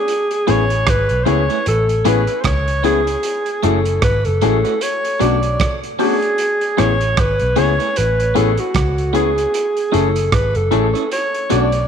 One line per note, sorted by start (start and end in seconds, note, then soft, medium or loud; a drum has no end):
0.00 0.51 G#4 loud
0.08 closed hi-hat medium
0.31 closed hi-hat soft
0.47 0.84 A1 loud
0.47 0.62 A3 medium
0.47 0.62 B3 medium
0.47 0.62 C#4 medium
0.47 0.63 E4 medium
0.47 0.62 E4 medium
0.47 0.63 G#4 loud
0.47 0.62 G#4 loud
0.47 0.63 C#5 medium
0.47 0.91 C#5 loud
0.47 closed hi-hat medium
0.70 closed hi-hat medium
0.87 1.08 G#1 loud
0.87 1.25 B4 loud
0.87 kick loud
0.87 cross-stick loud
0.87 closed hi-hat loud
1.09 1.26 B1 medium
1.09 closed hi-hat medium
1.23 1.40 A3 medium
1.23 1.41 B3 medium
1.23 1.41 C#4 medium
1.23 1.41 E4 medium
1.23 1.41 G#4 loud
1.23 1.30 C5 medium
1.23 1.41 C#5 medium
1.23 closed hi-hat medium
1.28 1.47 C#2 medium
1.28 1.67 C#5 loud
1.49 1.58 A3 medium
1.49 1.58 E4 medium
1.49 1.58 G#4 medium
1.49 1.57 C#5 medium
1.49 closed hi-hat soft
1.66 2.02 A1 loud
1.66 2.09 A4 loud
1.66 closed hi-hat loud
1.89 closed hi-hat medium
2.05 2.26 A1 medium
2.05 2.19 A3 medium
2.05 2.20 B3 loud
2.05 2.20 C#4 medium
2.05 2.20 E4 medium
2.05 2.20 G#4 loud
2.05 2.42 B4 medium
2.05 2.20 C#5 medium
2.05 closed hi-hat loud
2.27 closed hi-hat medium
2.41 2.47 C5 medium
2.41 kick loud
2.41 closed hi-hat medium
2.45 3.15 C#2 medium
2.45 2.85 C#5 loud
2.45 cross-stick loud
2.68 closed hi-hat medium
2.83 2.98 A3 loud
2.83 2.99 B3 medium
2.83 2.99 C#4 medium
2.83 2.99 E4 medium
2.83 2.99 E4 loud
2.83 2.99 G#4 medium
2.83 2.99 G#4 loud
2.83 3.66 G#4 loud
2.83 2.99 C#5 loud
2.83 closed hi-hat medium
3.06 muted clean electric guitar stroke medium
3.06 closed hi-hat medium
3.23 closed hi-hat medium
3.46 closed hi-hat medium
3.63 3.99 F#1 loud
3.63 3.77 A3 loud
3.63 3.78 A3 medium
3.63 3.78 C#4 medium
3.63 3.77 E4 loud
3.63 3.78 E4 medium
3.63 3.77 F#4 loud
3.63 3.78 G#4 loud
3.63 4.03 A4 medium
3.63 3.78 C#5 medium
3.63 closed hi-hat medium
3.85 closed hi-hat medium
4.02 4.23 G#1 medium
4.02 4.27 B4 loud
4.02 kick loud
4.02 cross-stick loud
4.02 closed hi-hat medium
4.25 4.41 F#1 medium
4.25 4.83 A4 loud
4.25 closed hi-hat soft
4.41 4.62 A1 medium
4.41 4.56 A3 medium
4.41 4.57 A3 medium
4.41 4.57 C#4 medium
4.41 4.56 E4 medium
4.41 4.57 E4 medium
4.41 4.56 F#4 medium
4.41 4.57 G#4 loud
4.41 4.57 C#5 loud
4.41 closed hi-hat medium
4.64 4.73 A3 soft
4.64 4.73 E4 medium
4.64 4.73 F#4 medium
4.64 4.73 C#5 medium
4.64 closed hi-hat soft
4.81 5.23 C#5 loud
4.81 closed hi-hat loud
5.05 closed hi-hat medium
5.19 5.56 B1 medium
5.19 5.35 A3 medium
5.19 5.34 B3 medium
5.19 5.35 C#4 medium
5.19 5.35 D4 medium
5.19 5.35 F#4 loud
5.19 5.35 F#4 medium
5.19 5.35 A4 medium
5.19 5.75 D5 loud
5.19 5.35 D5 medium
5.19 closed hi-hat medium
5.43 closed hi-hat medium
5.60 kick loud
5.60 cross-stick loud
5.60 closed hi-hat medium
5.83 closed hi-hat medium
5.99 6.14 A3 medium
5.99 6.13 B3 medium
5.99 6.14 C#4 medium
5.99 6.14 D4 medium
5.99 6.13 F#4 medium
5.99 6.14 F#4 loud
5.99 6.81 G#4 loud
5.99 6.14 A4 loud
5.99 6.14 D5 loud
5.99 open hi-hat medium
6.22 closed hi-hat medium
6.38 closed hi-hat medium
6.61 closed hi-hat medium
6.77 7.14 A1 loud
6.77 6.92 A3 medium
6.77 6.92 B3 medium
6.77 6.93 C#4 medium
6.77 6.92 E4 medium
6.77 6.93 E4 medium
6.77 6.93 G#4 medium
6.77 6.92 G#4 medium
6.77 6.92 C#5 medium
6.77 7.21 C#5 loud
6.77 cross-stick medium
6.77 closed hi-hat medium
7.01 closed hi-hat medium
7.17 7.38 G#1 loud
7.17 7.60 B4 loud
7.17 kick loud
7.17 cross-stick loud
7.17 closed hi-hat medium
7.39 7.56 B1 loud
7.39 closed hi-hat soft
7.56 7.77 C#2 medium
7.56 7.70 A3 loud
7.56 7.71 B3 loud
7.56 7.71 C#4 medium
7.56 7.71 E4 medium
7.56 7.71 G#4 loud
7.56 7.71 G#4 medium
7.56 7.71 C#5 loud
7.56 7.99 C#5 loud
7.56 closed hi-hat medium
7.79 7.88 A3 soft
7.79 7.88 E4 medium
7.79 7.88 G#4 medium
7.79 7.87 C#5 medium
7.79 closed hi-hat soft
7.96 8.32 A1 loud
7.96 8.38 B4 loud
7.96 closed hi-hat medium
8.20 closed hi-hat medium
8.35 8.57 A1 loud
8.35 8.49 A3 medium
8.35 8.50 B3 loud
8.35 8.50 C#4 medium
8.35 8.50 E4 medium
8.35 8.49 E4 medium
8.35 8.50 G#4 loud
8.35 8.50 G#4 medium
8.35 8.61 A4 medium
8.35 8.50 C#5 medium
8.35 closed hi-hat medium
8.57 9.15 F#4 medium
8.57 closed hi-hat medium
8.74 9.45 C#2 medium
8.74 kick loud
8.74 cross-stick loud
8.74 closed hi-hat medium
8.98 closed hi-hat soft
9.13 9.28 A3 medium
9.13 9.28 B3 medium
9.13 9.29 C#4 medium
9.13 9.28 E4 loud
9.13 9.29 E4 medium
9.13 9.29 G#4 loud
9.13 9.28 G#4 medium
9.13 9.96 G#4 loud
9.13 9.29 C#5 loud
9.13 closed hi-hat medium
9.36 muted clean electric guitar stroke medium
9.36 closed hi-hat medium
9.54 closed hi-hat loud
9.77 closed hi-hat medium
9.92 10.29 F#1 medium
9.92 10.07 A3 medium
9.92 10.06 C#4 medium
9.92 10.07 C#4 medium
9.92 10.07 E4 medium
9.92 10.07 E4 loud
9.92 10.08 G#4 loud
9.92 10.07 A4 loud
9.92 10.35 A4 medium
9.92 10.07 C#5 loud
9.92 closed hi-hat medium
10.16 closed hi-hat medium
10.32 10.53 G#1 medium
10.32 10.58 B4 loud
10.32 kick loud
10.32 cross-stick loud
10.32 closed hi-hat medium
10.55 10.70 F#1 medium
10.55 11.12 A4 medium
10.55 closed hi-hat soft
10.71 10.92 A1 medium
10.71 10.86 A3 loud
10.71 10.86 C#4 medium
10.71 10.86 E4 medium
10.71 10.86 G#4 loud
10.71 10.86 A4 medium
10.71 10.86 C#5 medium
10.71 closed hi-hat medium
10.94 11.03 C#4 medium
10.94 11.03 E4 medium
10.94 11.03 A4 medium
10.94 11.02 C#5 medium
10.94 closed hi-hat soft
11.12 11.48 C#5 loud
11.12 closed hi-hat loud
11.34 closed hi-hat medium
11.50 11.86 B1 loud
11.50 11.65 A3 medium
11.50 11.64 B3 medium
11.50 11.65 C#4 medium
11.50 11.65 D4 medium
11.50 11.65 F#4 loud
11.50 11.65 F#4 medium
11.50 11.65 A4 medium
11.50 11.88 D5 medium
11.50 11.65 D5 loud
11.50 closed hi-hat medium
11.72 closed hi-hat medium